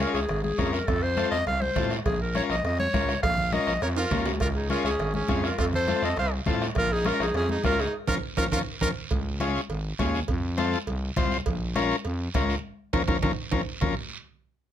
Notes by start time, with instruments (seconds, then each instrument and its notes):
0.00 transistor combo organ C#4 F4 G#4, clarinet A#4, bombo rim, high conga, short guiro
0.14 fm bass C#2, clarinet G#4, bombo rim, short guiro
0.29 fm bass G#1, bombo rim, cowbell, long guiro
0.43 clarinet G#4, high conga
0.58 fm bass F2, transistor combo organ C#4 F4 A#4, bombo low, bombo rim, high conga, low timbale, short guiro
0.73 clarinet A#4, bombo rim, short guiro
0.87 fm bass F2, clarinet A4, bombo low, bombo rim, cowbell, long guiro
1.03 clarinet C5
1.16 transistor combo organ C4 F4 A4, bombo rim, high conga, short guiro
1.31 fm bass F2, clarinet D#5, bombo rim, short guiro
1.47 fm bass C2, clarinet F5, bombo rim, cowbell, long guiro
1.61 clarinet C5, high conga
1.76 fm bass A2, transistor combo organ C4 F4 A4, bombo low, bombo rim, high conga, low conga, low timbale, short guiro
1.90 bombo rim, short guiro
2.06 fm bass A#1, clarinet G#4, bombo low, bombo rim, cowbell, long guiro
2.22 clarinet A#4
2.35 transistor combo organ C#4 F4 A#4, clarinet C#5, bombo rim, high conga, short guiro
2.50 fm bass A#1, clarinet D#5, bombo rim, short guiro
2.64 fm bass F2, clarinet D#5, bombo rim, cowbell, long guiro
2.79 clarinet C#5, high conga
2.93 fm bass C#2, transistor combo organ C#4 F4 A#4, bombo low, bombo rim, high conga, short guiro
3.09 bombo rim, short guiro
3.23 fm bass A#1, clarinet F5, bombo low, bombo rim, cowbell, long guiro
3.38 low conga
3.52 transistor combo organ C#4 F4 A#4, clarinet D#5, bombo rim, high conga, short guiro
3.67 fm bass A#1, bombo rim, short guiro
3.82 fm bass F2, trumpet A#4, clarinet C#5, bombo rim, cowbell, long guiro
3.97 trumpet F4, clarinet A#4, high timbale
4.11 fm bass D#2, transistor combo organ C#4 F4 A#4, bombo low, bombo rim, high conga, low conga, low timbale, short guiro
4.25 fm bass C#2, bombo rim, low timbale, short guiro
4.40 fm bass C#2, trumpet F4, clarinet A#4, bombo low, bombo rim, cowbell, long guiro
4.55 trumpet D#4, clarinet G#4
4.69 transistor combo organ C#4 F4 G#4, trumpet F4, clarinet A#4, bombo rim, high conga, short guiro
4.84 fm bass C#2, trumpet C#4, clarinet G#4, bombo rim, short guiro
4.99 fm bass G#1, bombo rim, cowbell, long guiro
5.14 trumpet C#4, clarinet G#4, high conga
5.28 fm bass F2, transistor combo organ C#4 F4 G#4, bombo low, bombo rim, high conga, short guiro
5.44 trumpet F4, clarinet A#4, bombo rim, short guiro
5.58 fm bass F2, trumpet F4, clarinet A4, bombo low, bombo rim, cowbell, long guiro
5.73 trumpet A4, clarinet C5, low conga
5.88 transistor combo organ C4 F4 A4, bombo rim, high conga, short guiro
6.02 fm bass F2, trumpet A4, clarinet D#5, bombo rim, short guiro
6.17 fm bass C2, trumpet C5, clarinet F5, bombo rim, cowbell, long guiro
6.46 fm bass A2, transistor combo organ C4 F4 A4, bombo low, bombo rim, high conga, low conga, short guiro
6.61 bombo rim, short guiro
6.75 fm bass A#1, trumpet F4, clarinet A#4, bombo low, bombo rim, cowbell, long guiro
6.92 trumpet D#4, clarinet G#4
7.05 transistor combo organ C#4 F4 A#4, trumpet F4, clarinet A#4, bombo rim, high conga, short guiro
7.20 fm bass A#1, trumpet D#4, clarinet G#4, bombo rim, short guiro
7.34 fm bass F2, trumpet C#4, clarinet G#4, bombo rim, cowbell, long guiro
7.49 trumpet D#4, clarinet G#4, high conga
7.64 fm bass C#2, transistor combo organ C#4 F4 A#4, trumpet F4, clarinet A#4, bombo low, bombo rim, high conga, low timbale, short guiro
7.79 trumpet D#4, clarinet G#4, bombo rim, short guiro
8.07 fm bass A#1, transistor combo organ C#4 F4 A#4, trumpet F4, clarinet A#4, bombo low, low conga, high timbale, long guiro
8.37 fm bass A#1, transistor combo organ C#4 F4 A#4, trumpet F4, clarinet A#4, bombo low, low conga, high timbale, long guiro
8.52 fm bass A#1, transistor combo organ C#4 F4 A#4, trumpet F4, clarinet A#4, bombo low, low conga, high timbale, long guiro
8.81 fm bass A#1, transistor combo organ C#4 F4 A#4, trumpet F4, clarinet A#4, bombo low, low conga, high timbale, long guiro
9.11 fm bass C#2, bombo low, cowbell, high conga, long guiro
9.40 transistor combo organ C#4 F4 G#4, bombo rim, cowbell, high conga, short guiro
9.55 short guiro
9.69 fm bass G#1, cowbell, high conga, long guiro
9.99 fm bass D#2, transistor combo organ C#4 F4 G#4, bombo low, bombo rim, cowbell, high conga, low timbale, short guiro
10.14 short guiro
10.28 fm bass F2, bombo low, cowbell, high conga, long guiro
10.57 transistor combo organ C4 F4 A4, bombo rim, cowbell, high conga, short guiro
10.73 short guiro
10.87 fm bass C2, cowbell, high conga, long guiro
11.16 fm bass C2, transistor combo organ C4 F4 C5, bombo low, bombo rim, cowbell, high conga, low conga, short guiro
11.31 short guiro
11.46 fm bass A#1, bombo low, cowbell, high conga, long guiro
11.75 transistor combo organ C#4 F4 A#4, bombo rim, cowbell, high conga, short guiro
11.91 short guiro
12.05 fm bass F2, cowbell, high conga, long guiro
12.34 fm bass C#2, transistor combo organ C#4 F4 A#4, bombo low, bombo rim, cowbell, high conga, short guiro
12.49 short guiro
12.93 fm bass A#1, transistor combo organ C#4 F4 A#4, bombo low, low conga, high timbale, long guiro
13.08 fm bass A#1, transistor combo organ C#4 F4 A#4, bombo low, low conga, high timbale, long guiro
13.22 fm bass A#1, transistor combo organ C#4 F4 A#4, bombo low, low conga, high timbale, long guiro
13.52 fm bass A#1, transistor combo organ C#4 F4 A#4, bombo low, low conga, high timbale, long guiro
13.81 fm bass A#1, transistor combo organ C#4 F4 A#4, bombo low, low conga, low timbale, long guiro